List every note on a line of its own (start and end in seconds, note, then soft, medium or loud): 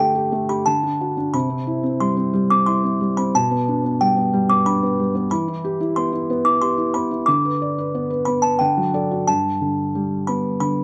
0.00 0.63 D3 medium
0.00 0.31 A3 soft
0.00 0.15 G4 soft
0.00 0.64 A4 medium
0.00 0.51 G5 medium
0.15 0.47 G4 soft
0.32 0.66 A3 medium
0.49 0.66 G4 soft
0.49 0.67 B5 medium
0.66 1.32 D3 medium
0.66 1.14 A5 medium
0.83 1.16 D4 soft
1.01 1.33 F#4 soft
1.17 1.34 D4 soft
1.34 3.30 C3 medium
1.34 2.03 B5 medium
1.50 1.82 C4 soft
1.67 2.65 E4 medium
1.83 2.15 C4 soft
2.00 2.32 G3 soft
2.00 2.52 C6 medium
2.17 2.49 C4 soft
2.33 2.99 G3 medium
2.50 2.82 C4 soft
2.50 2.68 D6 medium
2.66 3.32 E4 medium
2.66 3.18 C6 medium
2.84 3.16 C4 soft
3.00 3.33 G3 soft
3.17 3.34 C4 soft
3.17 3.35 B5 medium
3.34 5.27 B2 medium
3.34 4.03 A5 medium
3.51 3.82 B3 soft
3.68 4.64 D4 medium
3.84 4.15 B3 soft
4.01 4.32 G3 soft
4.01 4.51 G5 medium
4.17 4.48 B3 soft
4.33 4.98 G3 medium
4.50 4.81 B3 medium
4.50 4.66 D6 medium
4.66 5.29 D4 medium
4.66 5.11 B5 medium
4.83 5.13 B3 medium
4.99 5.30 G3 medium
5.15 5.30 B3 medium
5.31 7.23 E3 medium
5.31 5.98 B5 medium
5.48 5.79 E4 medium
5.64 6.60 G4 medium
5.80 6.11 E4 medium
5.96 6.28 B3 soft
5.96 6.46 C6 medium
6.13 6.44 E4 medium
6.30 6.94 B3 medium
6.45 6.76 E4 medium
6.45 6.62 D6 medium
6.61 7.25 G4 soft
6.61 6.95 C6 medium
6.78 7.10 E4 soft
6.94 7.26 B3 soft
6.94 7.28 B5 medium
7.11 7.27 E4 medium
7.26 8.57 D3 medium
7.26 8.56 D6 medium
7.45 7.77 B4 soft
7.62 8.58 D5 soft
7.78 8.09 B4 medium
7.95 8.26 B3 soft
8.10 8.43 B4 soft
8.25 8.60 B3 medium
8.25 8.43 B5 medium
8.42 8.60 B4 medium
8.42 8.50 A5 medium
8.59 9.26 D3 medium
8.59 8.92 F#5 medium
8.59 9.29 G5 medium
8.77 9.27 F#3 soft
8.94 9.27 A4 soft
8.94 9.26 D5 medium
9.11 9.28 F#4 soft
9.27 10.84 G2 medium
9.27 10.31 A5 medium
9.61 10.59 D3 soft
9.95 10.84 G3 soft
10.27 10.84 B3 soft
10.27 10.59 B5 medium
10.60 10.84 D3 soft
10.60 10.84 B5 medium